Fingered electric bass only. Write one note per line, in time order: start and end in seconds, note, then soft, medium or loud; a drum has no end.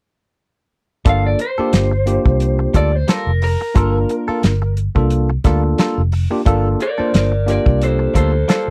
1.06 1.34 G1 medium
1.59 muted fingered electric bass stroke soft
1.73 2.17 G1 medium
2.26 2.66 C2 medium
2.74 3.03 D2 medium
3.27 3.55 F1 medium
3.76 4.04 G1 medium
4.28 muted fingered electric bass stroke soft
4.44 4.87 G1 medium
4.95 5.36 C2 medium
5.45 5.73 D2 medium
5.98 6.26 F1 medium
6.46 6.74 G1 medium
6.99 muted fingered electric bass stroke soft
7.14 7.58 G1 medium
7.66 8.07 C2 medium
8.15 8.43 D2 medium